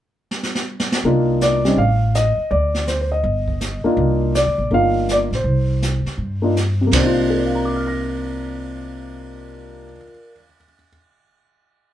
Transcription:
0.31 snare
0.43 snare
0.55 snare
0.80 snare
0.92 snare
1.04 C2 A#3 D4 D#4 F4, brush sweep
1.41 D5, snare, hi-hat pedal
1.65 G3 C4 C#4 D#4, snare
1.77 A1 F5, brush sweep
2.15 D#5, snare, hi-hat pedal
2.37 muted upright bass stroke
2.51 D2 D5, brush sweep
2.74 snare
2.87 C5, snare, hi-hat pedal
3.01 C5
3.12 D#5
3.24 G1, brush sweep
3.48 kick
3.61 snare, hi-hat pedal
3.84 A#3 D4 D#4 F4, muted upright bass stroke
3.97 C2, brush sweep
4.35 D5, snare, hi-hat pedal
4.46 D2
4.58 A#1
4.71 G1 A#3 D4 D#4 F4 F5, brush sweep
5.09 D5, snare, hi-hat pedal
5.31 A#1, snare
5.35 C5
5.44 C2, brush sweep
5.82 snare, hi-hat pedal
6.05 muted upright bass stroke, snare
6.18 G2, brush sweep
6.42 A#3 D4 D#4 F4
6.57 snare, hi-hat pedal
6.81 C3
6.87 A#3
6.93 C2 D4 C5, kick, snare, ride bell
7.00 D#4
7.06 F4
7.30 A#4
7.38 D5
7.46 F5
7.55 A#5
7.65 D6
7.76 F6
7.87 A#6

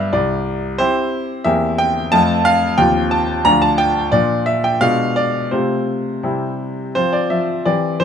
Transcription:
Already playing: G2 B3 D4 G4 D5 E5 F5
0.13 C2 D5
0.78 C4 E4 G4 C5
1.44 E2 A#3 C4 G4 E5
1.78 G5
2.12 F2 A3 C4 F4 A5
2.45 F5
2.78 D#2 F3 C4 F4 G5
3.11 A5
3.45 D2 F3 D4 F4 A#5
3.62 A5
3.78 G5
4.12 A#2 F3 D4 F4 D5
4.46 E5
4.64 G5
4.81 B2 G#3 D4 F4 F5
5.16 D5
5.51 C3 A3 C4 F4 C5
6.23 C3 G3 C4 E4
6.95 F3 C4 F4 C5
7.13 D5
7.30 F3 E5
7.65 E3 C4 G4 D5
8.00 E3 C5

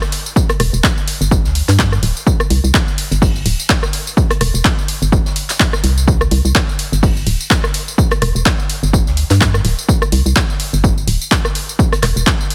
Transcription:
0.02 cross-stick, tambourine
0.12 open hi-hat, shaker
0.26 tambourine
0.36 kick, tambourine, shaker
0.49 cross-stick, closed hi-hat, tambourine
0.60 E1, cross-stick, open hi-hat, shaker
0.73 E1, tambourine
0.83 kick, snare, clap, tambourine
0.98 tambourine
1.08 open hi-hat
1.21 G1, tambourine
1.31 kick, tambourine, shaker
1.44 D2, snare, tambourine
1.55 open hi-hat, shaker
1.69 G2, snare, clap, open hi-hat, tambourine
1.79 kick, snare, clap, tambourine
1.92 cross-stick, tambourine
2.03 D1, open hi-hat
2.17 tambourine
2.26 kick, tambourine, shaker
2.40 cross-stick, tambourine
2.50 C2, open hi-hat, shaker
2.64 C2, tambourine
2.74 kick, snare, clap, tambourine
2.88 tambourine
2.98 open hi-hat
3.11 G1, closed hi-hat, tambourine
3.22 kick, open hi-hat, tambourine
3.36 tambourine
3.46 D1, open hi-hat
3.60 tambourine
3.69 kick, snare, clap, tambourine
3.83 cross-stick, tambourine
3.93 open hi-hat
4.07 tambourine
4.17 kick, tambourine, shaker
4.30 cross-stick, closed hi-hat, tambourine
4.41 E1, cross-stick, open hi-hat
4.54 E1, tambourine
4.65 kick, snare, clap, tambourine
4.79 tambourine
4.88 open hi-hat
5.02 G1, tambourine
5.12 kick, tambourine, shaker
5.25 snare, tambourine
5.36 open hi-hat, shaker
5.49 snare, clap, open hi-hat, tambourine
5.60 kick, snare, clap, tambourine
5.73 cross-stick, tambourine
5.84 C2, open hi-hat
5.98 tambourine
6.08 kick, tambourine, shaker
6.21 cross-stick, tambourine
6.31 C2, open hi-hat, shaker
6.45 C2, tambourine
6.55 kick, snare, clap, tambourine
6.69 tambourine
6.79 open hi-hat
6.92 G1, closed hi-hat, tambourine
7.03 kick, open hi-hat, tambourine
7.17 tambourine
7.27 D1, open hi-hat, shaker
7.40 tambourine
7.50 kick, snare, clap, tambourine
7.64 cross-stick, tambourine
7.74 open hi-hat
7.88 tambourine
7.98 kick, tambourine, shaker
8.11 cross-stick, closed hi-hat, tambourine
8.22 E1, cross-stick, open hi-hat
8.35 E1, tambourine
8.46 kick, snare, clap, tambourine
8.60 tambourine
8.70 open hi-hat
8.83 G1, tambourine
8.93 kick, tambourine
9.07 D2, snare, tambourine
9.17 open hi-hat, shaker
9.30 G2, snare, clap, open hi-hat, tambourine
9.41 kick, snare, clap, tambourine
9.54 cross-stick, tambourine
9.65 D1, open hi-hat, shaker
9.79 tambourine
9.88 kick, tambourine, shaker
10.02 cross-stick, tambourine
10.12 C2, open hi-hat
10.26 C2, tambourine
10.36 kick, snare, clap, tambourine
10.50 tambourine
10.60 open hi-hat, shaker
10.73 G1, tambourine
10.84 kick, tambourine, shaker
10.98 tambourine, shaker
11.07 D1, open hi-hat
11.20 tambourine, shaker
11.31 kick, snare, clap, tambourine
11.45 cross-stick, tambourine
11.55 open hi-hat, shaker
11.69 tambourine
11.79 kick, tambourine, shaker
11.92 cross-stick, closed hi-hat, tambourine
12.03 E1, cross-stick, clap, open hi-hat
12.16 E1, tambourine
12.27 kick, snare, clap, tambourine
12.41 tambourine
12.50 open hi-hat

